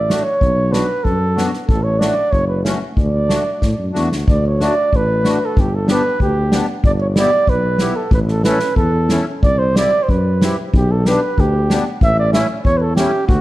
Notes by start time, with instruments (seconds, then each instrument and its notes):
Already playing: tuba A1, flugelhorn D5
0.08 accordion A3 D4 F#4, snare
0.23 flugelhorn C#5
0.41 tuba B1, kick
0.71 accordion B3 D4 F#4, flugelhorn B4, snare
1.04 tuba F#2, flugelhorn A4, kick
1.35 accordion B3 D4 F#4, snare
1.53 snare
1.67 tuba A1, flugelhorn A4, kick
1.83 flugelhorn C#5
1.99 accordion A3 D4 F#4, flugelhorn D5, snare
2.31 tuba F#1, flugelhorn C#5, kick
2.48 flugelhorn B4
2.64 accordion A3 C#4 F#4, snare
2.97 tuba D2, flugelhorn D5, kick
3.28 accordion A3 D4 F#4, snare
3.62 tuba A2, kick, snare
3.78 tuba F#2
3.93 tuba E2, accordion A3 D4 F#4, snare
4.12 tuba D2, snare
4.28 tuba D2, flugelhorn D5, kick
4.47 flugelhorn C#5
4.60 accordion A3 D4 F#4, flugelhorn D5, snare
4.93 tuba A1, flugelhorn B4, kick
5.24 accordion A3 D4 F#4, snare
5.45 flugelhorn A4
5.57 tuba G1, flugelhorn G4, kick
5.75 flugelhorn A4
5.88 accordion B3 D4 G4, flugelhorn B4, snare
6.20 tuba D2, flugelhorn G4, kick
6.51 accordion B3 D4 G4, snare
6.84 tuba G1, flugelhorn D5, kick
7.00 flugelhorn C#5
7.16 accordion B3 E4 G4, flugelhorn D5, snare
7.47 tuba B1, flugelhorn B4, kick
7.79 accordion B3 E4 G4, snare
7.96 flugelhorn A4
8.11 tuba A1, flugelhorn B4, kick
8.28 flugelhorn A4, snare
8.44 accordion C#4 E4 A4, flugelhorn B4, snare
8.59 snare
8.76 tuba E2, flugelhorn A4, kick
9.09 accordion C#4 E4 A4, snare
9.43 tuba C2, flugelhorn D5, kick
9.59 flugelhorn C5
9.76 accordion C4 E4 G4, flugelhorn D5, snare
10.03 flugelhorn C5
10.08 tuba F#2, flugelhorn B4, kick
10.42 accordion C4 E4 G4, snare
10.74 tuba B1, flugelhorn G4, kick
10.91 flugelhorn A4
11.05 accordion B3 D4 G4, flugelhorn B4, snare
11.38 tuba D2, flugelhorn G4, kick
11.70 accordion B3 D4 G4, snare
12.01 tuba A1, flugelhorn E5, kick
12.19 flugelhorn D5
12.32 accordion A3 C#4 E4, flugelhorn E5, snare
12.65 tuba E2, flugelhorn C#5, kick
12.78 flugelhorn A4 B4
12.96 accordion A3 C#4 E4, flugelhorn G4, snare
13.28 tuba D2, flugelhorn F#4, kick